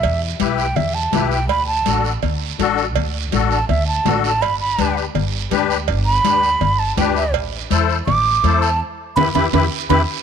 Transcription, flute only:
X:1
M:4/4
L:1/8
Q:1/4=164
K:Em
V:1 name="Flute"
e z2 g e a2 g | b a2 z4 z | z3 a e a2 a | b b2 z4 z |
z b4 a g e | z4 d'3 a | z2 b b b z b z |]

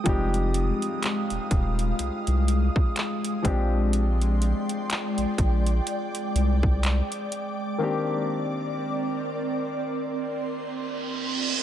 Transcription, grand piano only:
X:1
M:4/4
L:1/8
Q:"Swing 16ths" 1/4=62
K:Fdor
V:1 name="Grand piano"
[F,G,A,CEG]6- [F,G,A,CEG] [F,A,CDG]- | [F,A,CDG]6- [F,A,CDG] z | [E,B,CDG]8 |]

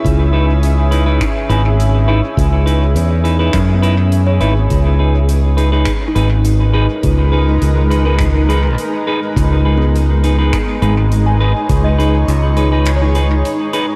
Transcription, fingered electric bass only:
X:1
M:4/4
L:1/8
Q:1/4=103
K:G#m
V:1 name="Fingered electric bass" clef=bass
C,,4 z G,,,2 z | C,,2 E,,2 F,,3 G,,, | C,,4 z G,,,2 z | C,,2 C,,4 z2 |
C,,4 z G,,,2 z | C,,2 C,,4 z2 |]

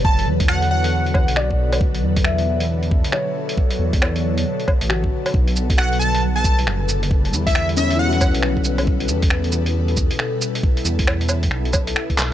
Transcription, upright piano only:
X:1
M:4/4
L:1/16
Q:"Swing 16ths" 1/4=136
K:Glyd
V:1 name="Upright piano"
c4- c z6 z d4- | d4 e8 c4- | c6- c z4 z F4- | F2 z12 z2 |
z6 C E F8- | F3 z12 z | z16 |]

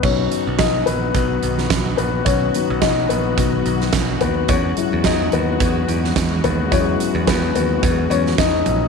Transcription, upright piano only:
X:1
M:4/4
L:1/8
Q:"Swing 16ths" 1/4=108
K:B
V:1 name="Upright piano"
[Cc]2 [Dd] [B,B]4 [B,B] | [Cc]2 [Dd] [B,B]4 [B,B] | [Cc]2 [Dd] [B,B]4 [B,B] | [Cc]2 [B,B] [B,B]2 [Cc] [Dd]2 |]
V:2 name="Upright piano"
[F,B,D]3 z [F,B,D] z3 | z [F,B,D]3 [F,B,D] z3 | z [F,G,E]3 z4 | [F,G,E]3 z4 z |]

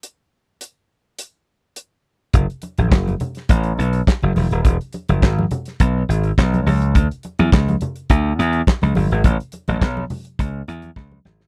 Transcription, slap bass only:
X:1
M:4/4
L:1/16
Q:1/4=104
K:F#m
V:1 name="Slap bass" clef=bass
z16 | F,,, z2 A,,, F,,,2 z2 A,,,2 B,,,2 z F,,, E,,, ^D,,, | E,,, z2 F,,, G,,,2 z2 B,,,2 G,,,2 B,,,2 C,,2 | D,, z2 E,, C,,2 z2 D,,2 E,,2 z C,, =G,,, ^G,,, |
A,,, z2 A,,, B,,,2 z2 C,,2 E,,2 C,,2 G,,,2 |]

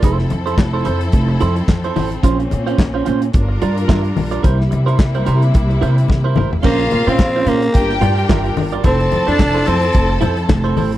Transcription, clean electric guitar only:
X:1
M:4/4
L:1/16
Q:"Swing 16ths" 1/4=109
K:F
V:1 name="Clean electric guitar"
[EAc] z2 [EAc] z [EAc] [EAc] z3 [EAc] z2 [EAc] [EAc] z | [_DFc] z2 [DFc] z [DFc] [DFc] z3 [FB=d] z [FBe] z2 [FBd] | [EBc] z2 [EBc] z [EBc] [EBc] z3 [EBc] z2 [EBc] [EBc] z | [_DFc] z2 [DFc] z [DFc] [DFc] z3 [FB=d] z [FBe] z2 [FBd] |
[EAc] z2 [EAc] z [EAc] [EAc] z3 [EAc] z2 [EAc] [EAc] z |]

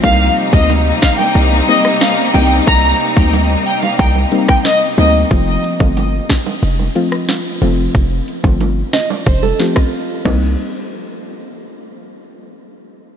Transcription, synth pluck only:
X:1
M:4/4
L:1/16
Q:1/4=91
K:Fmix
V:1 name="Synth pluck"
[G,B,CE]3 [G,B,CE] z6 [G,B,CE] z3 [G,B,CE]2 | z3 [G,B,CE] z6 [G,B,CE] z3 [G,B,CE]2 | [F,A,CF]3 [F,A,CF] z6 [F,A,CF] z3 [F,A,CF]2 | z3 [F,A,CF] z6 [F,A,CF] z3 [G,B,CE]2 |
z16 |]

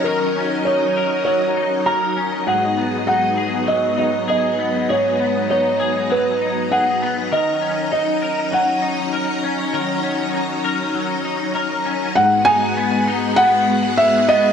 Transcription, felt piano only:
X:1
M:4/4
L:1/8
Q:1/4=99
K:G#m
V:1 name="Felt piano"
A2 c2 c2 a2 | f2 f2 d d d2 | c2 c2 B2 f2 | d2 d2 f4- |
f6 z2 | f g2 z f2 e d |]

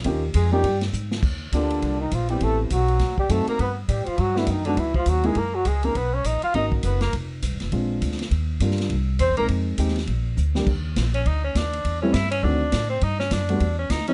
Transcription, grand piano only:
X:1
M:4/4
L:1/8
Q:"Swing" 1/4=204
K:Ebmix
V:1 name="Grand piano"
[B,DEFG] z2 [B,DEFG] z4 | [K:Gphr] z2 [B,DFG]3 z2 [_C=C_FG]- | [_C=C_FG]2 z4 [=A,CE^F]2 | z4 z [=A,=B,D^F] z [_A,B,EF] |
z3 [A,B,E_F] z3 [B,_DEA] | z4 [^A,^C^D^F]3 z | z4 [A,CDF]3 z | z2 [G,B,DF]2 z3 [^G,C^DB]- |
[^G,C^DB]2 [A,CE=G] z4 [E,,=G,B,=DG] | z8 | z [G,=A,=B,C=E] z2 [_E,A,CD^F] z3 | z3 [G,=A,=B,D^F] z3 [_F,_A,B,_DE] |]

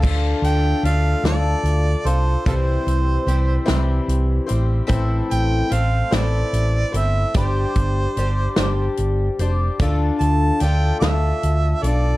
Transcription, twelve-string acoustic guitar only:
X:1
M:6/8
L:1/8
Q:3/8=49
K:Dm
V:1 name="Twelve-string acoustic guitar"
[D,A,DFA]2 [A,DFA] [D,A,DFA]2 [DFA] | [C,E,G,CEc]2 [G,CEc] [C,E,G,CEc]2 [G,CEc] | [A,,E,A,CEc]2 [A,Cc] [A,,E,A,CEc]2 [A,CEc] | [G,DGc]2 [G,DGc] [G,DGc]2 [DGc] |
[D,A,DFA]2 [A,DFA] [D,A,DFA]2 [DFA] |]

